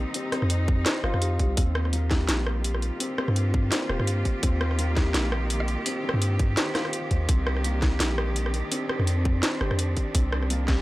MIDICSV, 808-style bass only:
0, 0, Header, 1, 2, 480
1, 0, Start_track
1, 0, Key_signature, -3, "minor"
1, 0, Tempo, 357143
1, 195, Time_signature, 4, 2, 24, 8
1, 14539, End_track
2, 0, Start_track
2, 0, Title_t, "808-style bass"
2, 0, Program_c, 0, 38
2, 570, Note_on_c, 0, 41, 101
2, 1141, Note_off_c, 0, 41, 0
2, 1393, Note_on_c, 0, 31, 100
2, 1518, Note_off_c, 0, 31, 0
2, 1530, Note_on_c, 0, 41, 83
2, 1861, Note_off_c, 0, 41, 0
2, 1875, Note_on_c, 0, 36, 100
2, 2098, Note_off_c, 0, 36, 0
2, 2115, Note_on_c, 0, 39, 99
2, 3061, Note_off_c, 0, 39, 0
2, 3074, Note_on_c, 0, 34, 98
2, 3912, Note_off_c, 0, 34, 0
2, 4410, Note_on_c, 0, 43, 103
2, 4982, Note_off_c, 0, 43, 0
2, 5236, Note_on_c, 0, 27, 101
2, 5359, Note_off_c, 0, 27, 0
2, 5372, Note_on_c, 0, 43, 82
2, 5702, Note_off_c, 0, 43, 0
2, 5956, Note_on_c, 0, 39, 102
2, 6902, Note_off_c, 0, 39, 0
2, 6915, Note_on_c, 0, 34, 97
2, 7753, Note_off_c, 0, 34, 0
2, 8250, Note_on_c, 0, 43, 100
2, 8822, Note_off_c, 0, 43, 0
2, 9555, Note_on_c, 0, 39, 81
2, 9778, Note_off_c, 0, 39, 0
2, 9795, Note_on_c, 0, 36, 101
2, 10742, Note_off_c, 0, 36, 0
2, 10754, Note_on_c, 0, 34, 96
2, 11592, Note_off_c, 0, 34, 0
2, 12089, Note_on_c, 0, 41, 102
2, 12661, Note_off_c, 0, 41, 0
2, 12916, Note_on_c, 0, 31, 102
2, 13040, Note_off_c, 0, 31, 0
2, 13050, Note_on_c, 0, 41, 82
2, 13382, Note_off_c, 0, 41, 0
2, 13637, Note_on_c, 0, 36, 98
2, 14539, Note_off_c, 0, 36, 0
2, 14539, End_track
0, 0, End_of_file